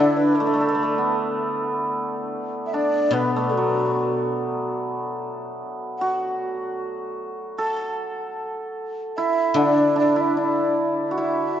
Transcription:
Already playing: D3 E4 D5
0.00 D4
0.17 B4
0.35 A4
0.40 A3
0.47 A3
0.54 A3
0.61 A3
0.69 A3
0.75 A3
0.83 A3
0.98 B3
2.66 E5
2.73 D4 D5
3.11 B2 B3 B4
3.35 A3 A4
3.49 A3
3.54 F#3 F#4
5.98 F#4 F#5
7.58 A4 A5
9.17 E4 E5
9.54 D3 D4 D5
9.96 D4 D5
10.16 E4
10.20 E5
10.37 D4 D5
11.11 F#4
11.18 E4 E5

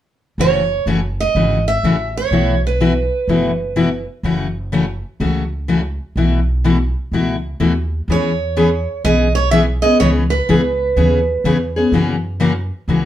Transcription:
0.38 F#1 C#3 E3 A3 C#4 F#4 C#5
0.86 F#1 C#3 E3 A3 C#4 F#4
1.20 D#5
1.35 G#1 C#3 E3 A3 C#4 F#4
1.68 E5
1.83 A1 C#3 E3 A3 C#4 F#4
2.17 C#5
2.31 B1 B2 E3 A3 E4 F#4
2.67 B4
2.80 B2 E3 A3 E4 F#4
3.28 F#1 B2 E3 A3 E4 F#4
3.76 B2 E3 A3 E4 F#4
4.23 F#1 C#3 E3 A3 C#4 F#4
4.72 C#3 E3 A3 C#4 F#4
5.20 C#2 C#3 E3 A3 C#4 F#4
5.68 C#3 E3 A3 C#4 F#4
6.16 B1 B2 E3 A3 E4 F#4
6.64 B2 E3 A3 E4 F#4
7.12 C#2 B2 E3 A3 E4 F#4
7.60 D#2 B2 E3 A3 E4 F#4
8.08 E2 E3 B3 C#4 G#4 C#5
8.57 E3 B3 C#4 G#4
9.04 B1 E3 B3 C#4 G#4 D#5
9.35 C#5
9.51 E3 B3 C#4 G#4 E5
9.82 B3 C#4 G#4 D#5
10.00 C#2 C#3 E3 B3 C#4 G#4 C#5
10.30 B4
10.49 C#2 C#3 E3 B3 C#4 G#4
10.96 D#2 C#3 E3 B3 C#4 G#4
11.44 E2 C#3 E3 B3 C#4 G#4
11.76 B3 C#4 G#4
11.92 F#2 C#3 E3 A#3 C#4 F#4
12.40 C#3 E3 A#3 C#4 F#4
12.88 C#2 C#3 E3 A#3 C#4 F#4

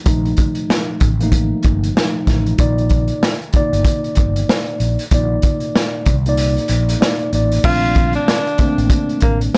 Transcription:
0.04 A#1 A#2 F3 A3 D#4, kick, closed hi-hat
0.25 closed hi-hat
0.37 kick, closed hi-hat
0.55 closed hi-hat
0.70 snare
1.00 A1, kick, closed hi-hat
1.20 F3 A3 A#3 D#4, closed hi-hat
1.32 kick, closed hi-hat
1.63 G1, kick, closed hi-hat
1.84 closed hi-hat
1.95 A#2 F3 A3 D#4, snare
2.25 A1 A#2 F3 A3 D#4, kick, snare, closed hi-hat
2.46 closed hi-hat
2.58 A#1 A#2 A#3 D#4 D5, kick, closed hi-hat
2.78 closed hi-hat
2.89 kick, closed hi-hat
3.08 closed hi-hat
3.23 snare
3.42 closed hi-hat
3.53 A#2 A#3 D#4 D5, kick, closed hi-hat
3.73 G1, closed hi-hat
3.85 kick, closed hi-hat
4.04 closed hi-hat
4.15 G1, kick, closed hi-hat
4.36 closed hi-hat
4.49 snare
4.66 closed hi-hat
4.80 A#1, closed hi-hat
4.99 closed hi-hat
5.11 A#1 A#2 A#3 D#4 D5, kick, closed hi-hat
5.42 kick, closed hi-hat
5.60 closed hi-hat
5.76 snare
6.06 C2, kick, closed hi-hat
6.26 A#2 A#3 D#4 D5, closed hi-hat
6.37 closed hi-hat
6.57 closed hi-hat
6.68 A#1, closed hi-hat
6.89 closed hi-hat
6.98 A#2 A#3 D#4 D5
7.02 snare
7.19 closed hi-hat
7.32 A1 A#2 A#3 D#4 D5, closed hi-hat
7.52 closed hi-hat
7.63 A#1 A#2 A3 C4 D4 F4, kick, crash
7.83 closed hi-hat
7.95 kick, closed hi-hat
8.13 D4, closed hi-hat
8.28 snare
8.47 closed hi-hat
8.58 A3 A#3 C4 D4, kick, closed hi-hat
8.78 A1, closed hi-hat
8.90 kick, closed hi-hat
9.09 closed hi-hat
9.20 A1 A#3, kick, closed hi-hat
9.41 closed hi-hat
9.55 snare

